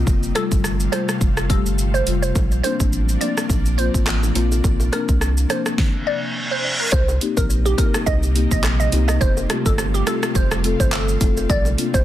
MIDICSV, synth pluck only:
0, 0, Header, 1, 2, 480
1, 0, Start_track
1, 0, Tempo, 571429
1, 58, Time_signature, 4, 2, 24, 8
1, 10118, End_track
2, 0, Start_track
2, 0, Title_t, "Synth pluck"
2, 0, Program_c, 0, 84
2, 295, Note_on_c, 0, 69, 85
2, 384, Note_off_c, 0, 69, 0
2, 774, Note_on_c, 0, 72, 82
2, 863, Note_off_c, 0, 72, 0
2, 1257, Note_on_c, 0, 69, 81
2, 1344, Note_off_c, 0, 69, 0
2, 1630, Note_on_c, 0, 72, 79
2, 1699, Note_off_c, 0, 72, 0
2, 1868, Note_on_c, 0, 72, 80
2, 1938, Note_off_c, 0, 72, 0
2, 2213, Note_on_c, 0, 72, 91
2, 2302, Note_off_c, 0, 72, 0
2, 2694, Note_on_c, 0, 74, 80
2, 2783, Note_off_c, 0, 74, 0
2, 3175, Note_on_c, 0, 72, 84
2, 3263, Note_off_c, 0, 72, 0
2, 4137, Note_on_c, 0, 70, 83
2, 4225, Note_off_c, 0, 70, 0
2, 4619, Note_on_c, 0, 72, 84
2, 4706, Note_off_c, 0, 72, 0
2, 5097, Note_on_c, 0, 74, 79
2, 5185, Note_off_c, 0, 74, 0
2, 5470, Note_on_c, 0, 72, 80
2, 5540, Note_off_c, 0, 72, 0
2, 5711, Note_on_c, 0, 70, 75
2, 5780, Note_off_c, 0, 70, 0
2, 5813, Note_on_c, 0, 72, 100
2, 5970, Note_off_c, 0, 72, 0
2, 6191, Note_on_c, 0, 70, 77
2, 6260, Note_off_c, 0, 70, 0
2, 6430, Note_on_c, 0, 67, 76
2, 6500, Note_off_c, 0, 67, 0
2, 6534, Note_on_c, 0, 70, 86
2, 6623, Note_off_c, 0, 70, 0
2, 6773, Note_on_c, 0, 75, 87
2, 6862, Note_off_c, 0, 75, 0
2, 7152, Note_on_c, 0, 75, 79
2, 7221, Note_off_c, 0, 75, 0
2, 7389, Note_on_c, 0, 75, 74
2, 7459, Note_off_c, 0, 75, 0
2, 7626, Note_on_c, 0, 75, 79
2, 7697, Note_off_c, 0, 75, 0
2, 7735, Note_on_c, 0, 72, 102
2, 7892, Note_off_c, 0, 72, 0
2, 8112, Note_on_c, 0, 69, 82
2, 8181, Note_off_c, 0, 69, 0
2, 8352, Note_on_c, 0, 67, 75
2, 8421, Note_off_c, 0, 67, 0
2, 8461, Note_on_c, 0, 69, 82
2, 8547, Note_off_c, 0, 69, 0
2, 8700, Note_on_c, 0, 72, 80
2, 8787, Note_off_c, 0, 72, 0
2, 9071, Note_on_c, 0, 72, 68
2, 9140, Note_off_c, 0, 72, 0
2, 9178, Note_on_c, 0, 69, 88
2, 9530, Note_off_c, 0, 69, 0
2, 9657, Note_on_c, 0, 74, 102
2, 9814, Note_off_c, 0, 74, 0
2, 10030, Note_on_c, 0, 72, 80
2, 10099, Note_off_c, 0, 72, 0
2, 10118, End_track
0, 0, End_of_file